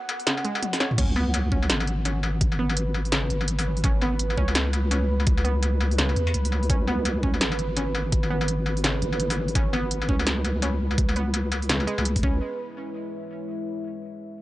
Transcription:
0.00 1.54 F#5 medium
0.09 closed hi-hat soft
0.09 struck metal medium
0.20 open hi-hat soft
0.27 0.44 C#3 loud
0.27 snare loud
0.27 closed hi-hat medium
0.37 struck metal medium
0.45 0.61 G#3 loud
0.45 closed hi-hat soft
0.55 struck metal medium
0.63 closed hi-hat medium
0.63 high tom medium
0.73 snare medium
0.73 open hi-hat medium
0.80 0.97 C#5 medium
0.80 snare medium
0.80 closed hi-hat soft
0.80 struck metal medium
0.91 mid tom medium
0.98 1.71 C#2 loud
0.98 1.15 C#4 medium
0.98 kick loud
0.98 closed hi-hat medium
0.98 crash medium
1.16 1.28 B3 loud
1.16 struck metal medium
1.34 closed hi-hat medium
1.34 struck metal medium
1.52 1.63 C#4 medium
1.52 kick medium
1.62 12.23 B4 medium
1.62 struck metal medium
1.69 3.29 G#1 loud
1.69 snare loud
1.69 closed hi-hat medium
1.80 struck metal medium
1.87 closed hi-hat soft
2.05 2.17 C#4 medium
2.05 closed hi-hat medium
2.05 struck metal medium
2.23 struck metal medium
2.41 kick loud
2.41 closed hi-hat medium
2.52 struck metal medium
2.59 2.71 B3 loud
2.70 struck metal medium
2.77 closed hi-hat medium
2.94 struck metal medium
3.05 open hi-hat soft
3.12 3.30 C#3 loud
3.12 snare loud
3.12 closed hi-hat medium
3.12 struck metal medium
3.30 4.36 G#1 medium
3.30 closed hi-hat soft
3.41 struck metal medium
3.48 closed hi-hat medium
3.59 open hi-hat medium
3.59 struck metal medium
3.77 open hi-hat soft
3.84 4.01 C#4 medium
3.84 kick loud
3.84 closed hi-hat medium
3.84 struck metal medium
4.01 4.14 B3 loud
4.01 struck metal medium
4.19 closed hi-hat medium
4.30 struck metal medium
4.37 6.15 C#2 medium
4.37 4.49 C#4 medium
4.37 kick medium
4.48 struck metal medium
4.55 snare loud
4.55 closed hi-hat medium
4.73 closed hi-hat soft
4.73 struck metal medium
4.91 5.03 C#4 medium
4.91 closed hi-hat medium
4.91 struck metal medium
5.20 struck metal medium
5.27 kick loud
5.27 closed hi-hat medium
5.38 struck metal medium
5.44 5.56 B3 loud
5.44 closed hi-hat soft
5.63 closed hi-hat medium
5.63 struck metal soft
5.81 struck metal medium
5.91 open hi-hat soft
5.98 6.15 C#3 loud
5.98 snare loud
5.98 closed hi-hat medium
6.09 struck metal soft
6.16 6.33 E2 medium
6.16 closed hi-hat soft
6.27 struck metal medium
6.34 6.69 C#2 loud
6.34 closed hi-hat medium
6.45 open hi-hat medium
6.52 struck metal medium
6.63 open hi-hat soft
6.70 7.43 C#2 loud
6.70 6.87 C#4 medium
6.70 kick loud
6.70 closed hi-hat medium
6.87 6.99 B3 loud
6.87 struck metal medium
7.05 closed hi-hat medium
7.05 struck metal medium
7.23 7.35 C#4 medium
7.23 kick medium
7.34 struck metal soft
7.41 9.01 G#1 loud
7.41 snare loud
7.41 closed hi-hat medium
7.52 struck metal medium
7.59 closed hi-hat soft
7.77 7.88 C#4 medium
7.77 closed hi-hat medium
7.77 struck metal soft
7.95 struck metal medium
8.12 kick loud
8.12 closed hi-hat medium
8.23 struck metal medium
8.30 8.42 B3 loud
8.41 struck metal medium
8.48 closed hi-hat medium
8.66 struck metal medium
8.77 open hi-hat soft
8.84 9.01 C#3 loud
8.84 snare loud
8.84 closed hi-hat medium
8.84 struck metal medium
9.02 10.08 G#1 medium
9.02 closed hi-hat soft
9.13 struck metal medium
9.20 closed hi-hat medium
9.30 open hi-hat medium
9.30 struck metal medium
9.48 open hi-hat soft
9.55 9.72 C#4 medium
9.55 kick loud
9.55 closed hi-hat medium
9.55 struck metal medium
9.73 9.85 B3 loud
9.73 struck metal medium
9.91 closed hi-hat medium
10.02 struck metal medium
10.09 11.86 C#2 medium
10.09 10.21 C#4 medium
10.09 kick medium
10.20 struck metal medium
10.27 snare loud
10.27 closed hi-hat medium
10.45 closed hi-hat soft
10.45 struck metal medium
10.62 10.74 C#4 medium
10.62 closed hi-hat medium
10.62 struck metal medium
10.91 struck metal medium
10.98 kick loud
10.98 closed hi-hat medium
11.09 struck metal medium
11.16 11.28 B3 loud
11.16 closed hi-hat soft
11.34 closed hi-hat medium
11.34 struck metal medium
11.52 closed hi-hat soft
11.52 struck metal medium
11.62 open hi-hat soft
11.69 11.87 C#3 loud
11.69 snare loud
11.69 closed hi-hat medium
11.80 struck metal medium
11.87 12.04 G#3 loud
11.87 closed hi-hat soft
11.98 12.23 C#2 medium
11.98 struck metal medium
12.05 closed hi-hat medium
12.16 kick medium
12.16 open hi-hat medium
12.23 12.40 C#2 loud
12.23 13.62 G#3 medium
12.23 12.40 C#4 loud
12.23 kick loud
12.30 13.62 E4 medium

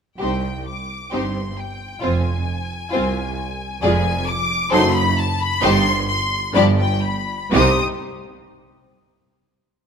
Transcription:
0.19 0.59 C2 soft
0.19 0.42 C4 soft
0.19 0.42 D#4 soft
0.19 0.41 G4 soft
0.19 0.42 C5 soft
0.19 0.64 G5 medium
0.66 1.11 D6 medium
1.11 1.51 G1 soft
1.11 1.50 G2 soft
1.11 1.33 C4 soft
1.11 1.33 D#4 soft
1.11 1.33 G4 soft
1.11 1.33 C5 soft
1.11 1.58 C6 medium
1.58 2.03 G5 medium
2.02 2.40 F1 medium
2.02 2.41 F2 medium
2.02 2.24 C4 soft
2.02 2.23 F4 soft
2.02 2.24 F4 soft
2.02 2.23 C5 soft
2.02 3.79 G#5 medium
2.92 3.31 C2 medium
2.92 3.14 C4 medium
2.92 3.14 F4 medium
2.92 3.13 C5 soft
3.82 4.20 F1 medium
3.82 4.20 F2 medium
3.82 4.03 G#3 medium
3.82 4.03 F4 medium
3.82 4.03 G#4 medium
3.82 4.03 D5 medium
3.82 4.26 G#5 loud
4.27 4.72 D6 loud
4.70 5.09 F#1 medium
4.70 5.09 F#2 medium
4.70 4.93 F#3 medium
4.70 4.92 D#4 medium
4.70 4.92 A4 medium
4.70 4.91 C5 medium
4.70 4.94 C6 loud
4.94 5.16 B5 loud
5.17 5.39 A5 loud
5.40 5.62 B5 loud
5.61 6.00 G1 medium
5.61 6.00 G2 medium
5.61 5.83 D#3 medium
5.61 5.83 D#4 medium
5.61 5.83 G4 medium
5.61 5.83 C5 medium
5.61 6.06 C6 loud
6.07 6.53 C6 loud
6.54 6.94 G1 medium
6.54 6.94 G2 medium
6.54 6.76 F3 medium
6.54 6.76 D4 medium
6.54 6.77 G4 medium
6.54 6.76 D5 medium
6.54 6.62 B5 loud
6.79 7.02 G5 medium
7.03 7.52 B5 medium
7.52 7.79 C2 medium
7.52 7.79 C3 medium
7.52 7.79 G3 medium
7.52 7.79 D#4 medium
7.52 7.80 G4 medium
7.52 7.80 C5 medium
7.52 7.80 D#6 loud

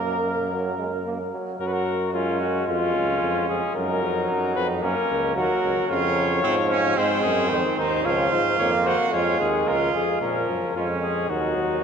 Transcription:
0.00 1.29 F#2 medium
0.00 0.49 A#3 medium
0.00 1.29 A#4 medium
0.52 0.78 F#3 medium
0.79 0.91 G#3 medium
1.06 1.18 A#3 medium
1.32 1.59 F#3 medium
1.59 2.64 F#2 medium
1.59 2.10 F#3 medium
1.59 2.10 F#4 medium
1.59 1.68 A#4 medium
1.67 1.75 B4 medium
1.73 2.13 A#4 medium
2.13 3.73 G#3 medium
2.13 2.67 C#4 medium
2.13 2.42 F4 medium
2.40 2.67 F#4 medium
2.67 2.97 F2 medium
2.67 3.74 C#4 medium
2.67 3.47 F4 medium
2.96 3.22 C#2 medium
3.22 3.49 F2 medium
3.49 3.62 F2 medium
3.49 3.75 G#4 medium
3.75 4.02 F#2 medium
3.75 4.80 F#3 medium
3.75 4.84 D#4 medium
3.75 4.54 A#4 medium
4.03 4.29 F2 medium
4.30 4.56 F#2 medium
4.55 4.83 F2 medium
4.55 4.67 B4 medium
4.81 4.95 F#2 medium
4.81 5.35 A#3 medium
4.81 5.36 C#4 medium
4.81 5.34 A#4 medium
5.10 5.36 C#2 medium
5.35 5.49 D#2 medium
5.35 5.89 F#3 medium
5.35 5.89 F#4 medium
5.35 5.87 A#4 medium
5.64 5.76 C#2 medium
5.88 6.42 F2 medium
5.88 6.44 C#3 medium
5.88 6.42 F4 medium
5.88 6.94 C#5 medium
6.43 6.96 G#2 medium
6.43 6.98 F3 medium
6.43 6.55 C4 medium
6.70 6.98 C#4 loud
6.97 7.24 G#2 medium
6.97 7.49 G#3 medium
6.97 7.78 C4 loud
6.97 7.21 C5 medium
7.22 7.51 F#2 medium
7.22 7.51 G#4 medium
7.50 7.63 F2 medium
7.50 8.03 D#3 medium
7.50 7.76 C5 medium
7.76 8.05 D#2 medium
7.76 8.07 D#4 medium
7.76 8.03 C5 medium
8.04 8.31 C#2 medium
8.04 8.39 F3 medium
8.04 8.88 F4 loud
8.04 8.34 C#5 medium
8.32 8.58 G#2 medium
8.32 8.58 C5 medium
8.58 8.94 F2 medium
8.58 9.15 A#3 medium
8.58 8.71 C#5 medium
8.85 9.13 F#4 loud
8.85 8.97 C5 medium
9.12 9.38 F2 medium
9.12 10.20 G#3 medium
9.12 9.48 F4 medium
9.12 9.39 C#5 medium
9.40 9.67 D#2 medium
9.40 9.69 G#4 medium
9.67 9.94 C#2 medium
9.67 10.18 F4 loud
9.67 9.94 A#4 medium
9.94 10.21 F2 medium
9.94 10.21 G#4 medium
10.21 10.47 A#2 medium
10.21 10.72 F3 medium
10.21 10.72 C#4 medium
10.21 10.72 A#4 medium
10.48 10.60 F#2 medium
10.75 11.28 F2 medium
10.75 11.32 G#3 medium
10.75 11.29 C#4 medium
10.75 10.88 F4 medium
11.03 11.31 G#4 medium
11.29 11.55 D#2 medium
11.29 11.84 F#3 medium
11.29 11.84 D#4 medium
11.29 11.84 F#4 medium
11.56 11.84 D#2 medium

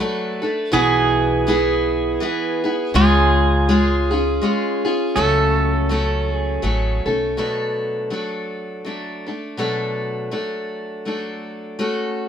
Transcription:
0.00 0.42 F#3 medium
0.00 0.43 A3 medium
0.00 0.41 D4 medium
0.00 0.41 A4 medium
0.00 0.81 B4 loud
0.42 0.72 A3 soft
0.42 0.73 D4 soft
0.42 0.73 A4 soft
0.72 2.17 B1 medium
0.72 1.46 B2 medium
0.72 1.45 E3 medium
0.72 1.46 B3 medium
0.72 1.47 E4 medium
0.72 1.49 G#4 loud
1.47 2.19 E3 medium
1.47 2.20 B3 medium
1.47 2.21 E4 medium
1.47 2.22 G#4 medium
2.20 2.63 E3 medium
2.20 2.64 B3 medium
2.20 2.64 E4 medium
2.20 2.63 G#4 medium
2.64 2.95 B3 soft
2.64 2.95 E4 soft
2.64 2.95 G#4 soft
2.94 4.38 C#2 loud
2.94 3.68 C#3 medium
2.94 3.68 G#3 medium
2.94 3.69 C#4 loud
2.94 3.69 F4 medium
2.94 3.69 G#4 loud
3.69 4.11 G#3 medium
3.69 4.11 C#4 medium
3.69 4.11 F4 medium
3.69 4.09 G#4 medium
4.11 4.41 C#4 soft
4.11 4.42 F4 medium
4.11 4.42 G#4 medium
4.42 4.84 G#3 medium
4.42 4.85 C#4 medium
4.42 4.84 F4 medium
4.42 4.84 G#4 medium
4.85 5.16 C#4 soft
4.85 5.16 F4 soft
4.85 5.16 G#4 medium
5.16 6.59 C#2 medium
5.16 5.89 C#3 medium
5.16 5.88 F#3 medium
5.16 5.89 A3 medium
5.16 5.90 C#4 medium
5.16 5.90 A4 medium
5.89 6.61 F#3 medium
5.89 6.62 A3 medium
5.89 6.62 C#4 medium
5.89 6.63 A4 medium
6.35 7.02 G#4 medium
6.62 7.02 A1 medium
6.62 7.05 F#3 medium
6.62 7.05 A3 medium
6.62 7.06 C#4 medium
6.62 7.04 A4 medium
7.06 7.34 B1 medium
7.06 7.37 A3 soft
7.06 7.37 C#4 soft
7.06 7.37 A4 soft
7.37 8.11 B2 medium
7.37 8.10 F#3 medium
7.37 8.11 A3 medium
7.37 8.11 D4 medium
7.37 8.13 A4 medium
8.10 8.84 F#3 soft
8.10 8.86 A3 soft
8.10 8.85 D4 soft
8.10 8.87 A4 medium
8.85 9.27 F#3 soft
8.85 9.28 A3 soft
8.85 9.27 D4 soft
8.85 9.25 A4 soft
9.27 9.58 A3 soft
9.27 9.58 D4 soft
9.27 9.58 A4 soft
9.57 10.32 B2 medium
9.57 10.31 F#3 medium
9.57 10.31 A3 medium
9.57 10.31 D4 medium
9.57 10.33 A4 medium
10.31 11.05 F#3 soft
10.31 11.06 A3 medium
10.31 11.06 D4 soft
10.31 11.07 A4 medium
11.05 11.78 F#3 soft
11.05 11.79 A3 soft
11.05 11.79 D4 soft
11.05 11.80 A4 soft
11.79 12.29 A3 medium
11.79 12.29 C#4 medium
11.79 12.29 F#4 medium
11.79 12.29 A4 medium

